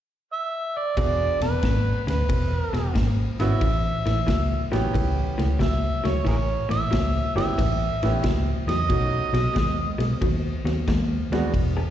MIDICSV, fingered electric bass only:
0, 0, Header, 1, 2, 480
1, 0, Start_track
1, 0, Key_signature, 4, "major"
1, 0, Tempo, 660066
1, 708, Time_signature, 4, 2, 24, 8
1, 8656, End_track
2, 0, Start_track
2, 0, Title_t, "Fingered electric bass"
2, 0, Program_c, 0, 33
2, 702, Note_on_c, 0, 28, 77
2, 914, Note_off_c, 0, 28, 0
2, 1021, Note_on_c, 0, 28, 71
2, 1126, Note_off_c, 0, 28, 0
2, 1185, Note_on_c, 0, 32, 81
2, 1396, Note_off_c, 0, 32, 0
2, 1508, Note_on_c, 0, 38, 70
2, 1612, Note_off_c, 0, 38, 0
2, 1664, Note_on_c, 0, 28, 81
2, 1876, Note_off_c, 0, 28, 0
2, 1982, Note_on_c, 0, 28, 83
2, 2088, Note_off_c, 0, 28, 0
2, 2149, Note_on_c, 0, 32, 77
2, 2359, Note_off_c, 0, 32, 0
2, 2467, Note_on_c, 0, 32, 67
2, 2571, Note_off_c, 0, 32, 0
2, 2632, Note_on_c, 0, 33, 85
2, 2842, Note_off_c, 0, 33, 0
2, 2955, Note_on_c, 0, 33, 77
2, 3057, Note_off_c, 0, 33, 0
2, 3112, Note_on_c, 0, 37, 81
2, 3322, Note_off_c, 0, 37, 0
2, 3434, Note_on_c, 0, 33, 67
2, 3537, Note_off_c, 0, 33, 0
2, 3594, Note_on_c, 0, 37, 83
2, 3803, Note_off_c, 0, 37, 0
2, 3919, Note_on_c, 0, 37, 87
2, 4020, Note_off_c, 0, 37, 0
2, 4070, Note_on_c, 0, 37, 89
2, 4281, Note_off_c, 0, 37, 0
2, 4400, Note_on_c, 0, 37, 73
2, 4501, Note_off_c, 0, 37, 0
2, 4556, Note_on_c, 0, 33, 84
2, 4765, Note_off_c, 0, 33, 0
2, 4875, Note_on_c, 0, 33, 74
2, 4977, Note_off_c, 0, 33, 0
2, 5035, Note_on_c, 0, 37, 81
2, 5244, Note_off_c, 0, 37, 0
2, 5348, Note_on_c, 0, 31, 68
2, 5453, Note_off_c, 0, 31, 0
2, 5515, Note_on_c, 0, 33, 89
2, 5724, Note_off_c, 0, 33, 0
2, 5838, Note_on_c, 0, 33, 86
2, 5939, Note_off_c, 0, 33, 0
2, 5992, Note_on_c, 0, 37, 84
2, 6202, Note_off_c, 0, 37, 0
2, 6305, Note_on_c, 0, 40, 72
2, 6411, Note_off_c, 0, 40, 0
2, 6474, Note_on_c, 0, 35, 77
2, 6683, Note_off_c, 0, 35, 0
2, 6783, Note_on_c, 0, 35, 80
2, 6889, Note_off_c, 0, 35, 0
2, 6954, Note_on_c, 0, 39, 78
2, 7163, Note_off_c, 0, 39, 0
2, 7262, Note_on_c, 0, 35, 76
2, 7368, Note_off_c, 0, 35, 0
2, 7429, Note_on_c, 0, 39, 84
2, 7639, Note_off_c, 0, 39, 0
2, 7741, Note_on_c, 0, 39, 86
2, 7847, Note_off_c, 0, 39, 0
2, 7907, Note_on_c, 0, 39, 83
2, 8118, Note_off_c, 0, 39, 0
2, 8218, Note_on_c, 0, 39, 68
2, 8324, Note_off_c, 0, 39, 0
2, 8389, Note_on_c, 0, 28, 92
2, 8593, Note_off_c, 0, 28, 0
2, 8656, End_track
0, 0, End_of_file